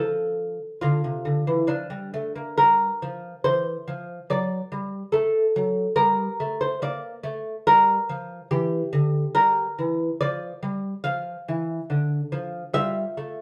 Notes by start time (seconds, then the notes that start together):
Already playing: F3 A4
0.81 D3 F4
1.04 C3
1.25 D3
1.47 E3
1.67 F3 D4
1.90 G3
2.14 A3
2.36 A#3
2.58 G3 A#4
3.02 F3
3.44 E3 C5
3.88 F3
4.30 F#3 D5
4.72 G3
5.12 A3 A4
5.56 F#3
5.96 G3 A#4
6.40 A3
6.61 C5
6.82 A#3 D5
7.23 A3
7.67 G3 A#4
8.09 F3
8.51 E3 G4
8.93 D3
9.35 G3 A#4
9.79 E3
10.21 F3 D5
10.63 G3
11.04 F3 F5
11.49 E3
11.90 D3
12.32 F3
12.74 G3 F4 E5
13.17 A3